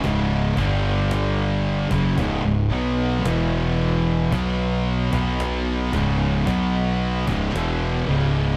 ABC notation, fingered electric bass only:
X:1
M:4/4
L:1/16
Q:1/4=56
K:C#m
V:1 name="Fingered electric bass" clef=bass
C,,,2 =G,,,4- G,,, F,,, C,,, C,,, B,,,2 E,,,4 | B,,,3 B,,,3 C,,,2 B,,,3 C,,, E,,,2 C,,,2 |]